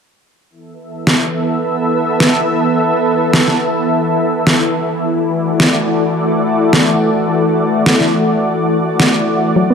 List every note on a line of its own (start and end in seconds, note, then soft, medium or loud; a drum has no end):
0.50 9.52 E3 medium
0.50 4.99 B3 medium
0.50 4.99 A4 medium
0.50 4.99 E5 medium
1.07 snare loud
2.20 snare loud
3.33 snare loud
3.48 snare soft
4.47 snare loud
5.03 9.52 A3 medium
5.03 9.74 F#4 medium
5.03 9.74 D5 medium
5.60 snare loud
6.73 snare loud
7.86 snare loud
8.00 snare soft
9.00 snare loud
9.56 9.74 D3 medium
9.56 9.68 F#3 medium
9.56 9.74 B3 medium
9.70 9.74 B3 medium